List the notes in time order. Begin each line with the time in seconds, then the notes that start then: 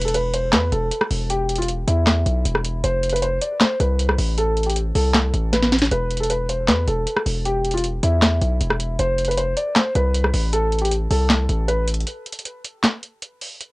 Already playing: E1
0.02 A4, closed hi-hat
0.08 closed hi-hat
0.14 B4, closed hi-hat
0.34 C5, closed hi-hat
0.53 E2 B4, cross-stick, snare, clap, closed hi-hat
0.72 E1 A4, closed hi-hat
0.91 closed hi-hat
1.01 cross-stick
1.11 E1, open hi-hat
1.30 G4, closed hi-hat
1.49 closed hi-hat
1.56 F4, closed hi-hat
1.62 closed hi-hat
1.68 closed hi-hat
1.88 E2 E4, closed hi-hat
2.07 cross-stick, snare, clap, closed hi-hat
2.26 B1, closed hi-hat
2.45 E1, closed hi-hat
2.55 cross-stick
2.65 closed hi-hat
2.84 F1 C5, closed hi-hat
3.03 closed hi-hat
3.09 B4, closed hi-hat
3.16 closed hi-hat
3.22 C5, closed hi-hat
3.41 D5, closed hi-hat
3.61 C5, cross-stick, snare, clap, closed hi-hat
3.80 C2 B4, closed hi-hat
3.99 closed hi-hat
4.09 cross-stick
4.18 A1, open hi-hat
4.38 A4, closed hi-hat
4.57 closed hi-hat
4.63 G4, closed hi-hat
4.70 closed hi-hat
4.76 closed hi-hat
4.95 C2 A4, open hi-hat
5.14 snare, clap, closed hi-hat
5.34 A1, closed hi-hat
5.53 B4, snare, closed hi-hat
5.63 snare
5.72 snare, closed hi-hat
5.79 snare, closed hi-hat
5.85 closed hi-hat
5.91 E1 B4, closed hi-hat
6.11 closed hi-hat
6.17 A4, closed hi-hat
6.23 closed hi-hat
6.30 B4, closed hi-hat
6.49 C5, closed hi-hat
6.68 E2 B4, cross-stick, snare, clap, closed hi-hat
6.88 E1 A4, closed hi-hat
7.07 closed hi-hat
7.16 cross-stick
7.26 E1, open hi-hat
7.45 G4, closed hi-hat
7.64 closed hi-hat
7.71 F4, closed hi-hat
7.77 closed hi-hat
7.84 closed hi-hat
8.03 E2 E4, closed hi-hat
8.22 cross-stick, snare, clap, closed hi-hat
8.41 B1, closed hi-hat
8.61 E1, closed hi-hat
8.70 cross-stick
8.80 closed hi-hat
8.99 F1 C5, closed hi-hat
9.18 closed hi-hat
9.25 B4, closed hi-hat
9.31 closed hi-hat
9.37 C5, closed hi-hat
9.57 D5, closed hi-hat
9.76 C5, cross-stick, snare, clap, closed hi-hat
9.95 C2 B4, closed hi-hat
10.14 closed hi-hat
10.24 cross-stick
10.34 A1, open hi-hat
10.53 A4, closed hi-hat
10.72 closed hi-hat
10.79 G4, closed hi-hat
10.85 closed hi-hat
10.91 closed hi-hat
11.11 C2 A4, open hi-hat
11.30 snare, clap, closed hi-hat
11.49 A1, closed hi-hat
11.68 B4, closed hi-hat
11.88 closed hi-hat
11.94 closed hi-hat
12.00 closed hi-hat
12.07 closed hi-hat
12.26 closed hi-hat
12.32 closed hi-hat
12.39 closed hi-hat
12.45 closed hi-hat
12.64 closed hi-hat
12.84 snare, clap, closed hi-hat
13.03 closed hi-hat
13.22 closed hi-hat
13.41 open hi-hat
13.61 closed hi-hat